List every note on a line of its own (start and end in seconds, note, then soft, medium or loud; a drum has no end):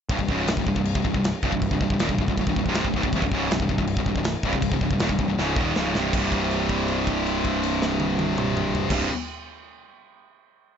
0.09 0.18 C1 medium
0.09 0.19 C2 medium
0.09 0.20 G2 loud
0.09 kick loud
0.09 crash medium
0.19 0.28 C1 medium
0.19 0.30 C2 medium
0.19 0.30 G2 medium
0.19 kick medium
0.28 0.47 C#1 medium
0.28 0.49 C#2 medium
0.28 0.49 G#2 medium
0.28 0.49 C#3 medium
0.28 kick medium
0.48 0.56 C1 medium
0.48 0.58 C2 medium
0.48 0.59 G2 medium
0.48 snare loud
0.48 crash medium
0.57 0.66 C1 medium
0.57 0.66 C2 medium
0.57 0.67 G2 medium
0.57 kick medium
0.66 0.76 C1 medium
0.66 0.74 C2 medium
0.66 0.75 G2 medium
0.66 kick medium
0.76 0.94 C1 loud
0.76 0.91 C2 medium
0.76 0.92 G2 medium
0.76 kick medium
0.85 crash medium
0.95 1.04 C1 medium
0.95 1.03 C2 medium
0.95 1.04 G2 medium
0.95 kick loud
1.04 1.14 C1 medium
1.04 1.14 C2 medium
1.04 1.13 G2 medium
1.04 kick medium
1.14 1.32 C1 medium
1.14 1.30 C2 medium
1.14 1.30 G2 medium
1.14 kick medium
1.24 snare loud
1.24 crash medium
1.43 1.52 C1 medium
1.43 1.52 C2 loud
1.43 1.53 G2 medium
1.43 kick medium
1.52 1.70 C1 medium
1.52 1.68 C2 medium
1.52 1.69 G2 medium
1.52 kick medium
1.62 kick medium
1.62 crash medium
1.71 1.80 C1 medium
1.71 1.81 C2 medium
1.71 1.82 G2 medium
1.71 kick medium
1.80 1.89 C1 medium
1.80 1.91 C2 medium
1.80 1.91 G2 medium
1.80 kick medium
1.90 1.99 C1 medium
1.90 2.00 C2 medium
1.90 2.01 G2 medium
1.90 kick loud
1.99 2.09 D#1 loud
1.99 2.09 D#2 loud
1.99 2.10 A#2 loud
1.99 snare loud
1.99 crash medium
2.09 2.18 C1 medium
2.09 2.20 C2 medium
2.09 2.20 G2 medium
2.09 kick medium
2.18 2.27 C1 medium
2.18 2.29 C2 medium
2.18 2.28 G2 medium
2.18 kick medium
2.28 2.37 C1 medium
2.28 2.39 C2 medium
2.28 2.38 G2 medium
2.28 kick medium
2.37 2.46 C1 medium
2.37 2.48 C2 medium
2.37 2.49 G2 medium
2.37 kick medium
2.37 crash medium
2.47 2.56 C1 medium
2.47 2.57 C2 medium
2.47 2.58 G2 medium
2.47 kick medium
2.56 2.65 C1 medium
2.56 2.67 C2 medium
2.56 2.67 G2 medium
2.56 kick medium
2.66 2.83 C1 medium
2.66 2.85 C2 medium
2.66 2.85 G2 medium
2.66 2.86 C3 medium
2.66 kick medium
2.74 snare loud
2.74 crash medium
2.84 2.93 C1 medium
2.84 2.95 C2 medium
2.84 2.95 G2 medium
2.84 kick medium
2.94 3.03 C#1 medium
2.94 3.04 C#2 medium
2.94 3.04 G#2 medium
2.94 kick medium
3.03 3.12 C1 medium
3.03 3.14 C2 medium
3.03 3.15 G2 medium
3.03 kick medium
3.13 3.21 C1 medium
3.13 3.23 C2 medium
3.13 kick medium
3.13 crash medium
3.17 3.23 G2 loud
3.22 3.31 C1 medium
3.22 3.32 C2 medium
3.22 3.33 G2 medium
3.22 kick medium
3.32 3.49 C#1 loud
3.32 3.50 C#2 medium
3.32 3.51 G#2 medium
3.32 3.51 C#3 loud
3.32 kick medium
3.51 3.59 C1 medium
3.51 3.61 C2 medium
3.51 3.61 G2 medium
3.51 snare loud
3.51 crash medium
3.60 3.69 C1 medium
3.60 3.68 C2 medium
3.60 3.69 G2 medium
3.60 kick medium
3.69 3.78 C1 medium
3.69 3.77 C2 medium
3.69 3.78 G2 medium
3.69 kick medium
3.78 3.96 C1 medium
3.78 3.94 C2 medium
3.78 3.94 G2 medium
3.78 kick medium
3.87 crash medium
3.97 4.06 C1 medium
3.97 4.06 C2 medium
3.97 4.06 G2 medium
3.97 kick medium
4.06 4.15 C1 medium
4.06 4.16 C2 medium
4.06 4.17 G2 medium
4.06 kick medium
4.16 4.33 C1 medium
4.16 4.32 C2 medium
4.16 4.32 G2 medium
4.16 kick medium
4.24 snare loud
4.24 crash medium
4.43 4.52 C1 loud
4.43 4.53 C2 medium
4.43 4.53 G2 medium
4.43 kick loud
4.53 4.71 C1 medium
4.53 4.69 C2 medium
4.53 4.69 G2 medium
4.53 kick medium
4.62 kick medium
4.62 crash medium
4.71 4.81 C1 medium
4.71 4.81 C2 medium
4.71 4.81 G2 medium
4.71 kick medium
4.81 4.90 C1 medium
4.81 4.91 C2 medium
4.81 4.92 G2 medium
4.81 kick medium
4.90 5.00 C1 medium
4.90 5.01 C2 medium
4.90 5.01 G2 medium
4.90 kick medium
4.99 5.09 D#1 loud
4.99 5.10 D#2 medium
4.99 5.10 A#2 loud
4.99 snare loud
4.99 crash medium
5.09 5.18 C1 medium
5.09 5.18 C2 medium
5.09 5.19 G2 medium
5.09 kick medium
5.18 5.28 C1 medium
5.18 5.28 C2 medium
5.18 5.29 G2 medium
5.18 kick medium
5.28 5.37 C1 medium
5.28 5.38 C2 medium
5.28 5.39 G2 medium
5.38 5.56 C#1 loud
5.38 5.57 C#2 medium
5.38 5.57 G#2 loud
5.38 5.57 C#3 loud
5.38 snare medium
5.56 5.74 D#1 medium
5.56 5.75 D#2 medium
5.56 5.76 A#2 medium
5.56 5.76 D#3 loud
5.56 kick loud
5.76 5.93 C#1 medium
5.76 5.95 C#2 loud
5.76 5.96 G#2 loud
5.76 5.96 C#3 loud
5.76 snare medium
5.95 6.12 C1 medium
5.95 6.13 C2 medium
5.95 6.14 G2 loud
5.95 6.14 C3 loud
5.95 snare medium
6.13 8.82 C1 medium
6.13 8.89 C2 loud
6.13 kick loud
6.13 crash medium
6.17 8.92 G2 medium
6.17 8.94 C3 loud
6.32 kick medium
6.32 crash soft
6.51 crash soft
6.69 kick medium
6.69 crash soft
6.88 crash soft
7.07 kick medium
7.07 crash soft
7.26 crash soft
7.45 kick medium
7.45 crash soft
7.63 crash medium
7.82 snare medium
8.00 high tom medium
8.19 high tom loud
8.38 mid tom loud
8.57 mid tom medium
8.75 floor tom loud
8.90 9.06 C1 medium
8.90 9.07 C2 loud
8.90 9.09 G2 loud
8.90 kick loud
8.90 snare medium
8.90 crash loud
8.94 9.09 C3 loud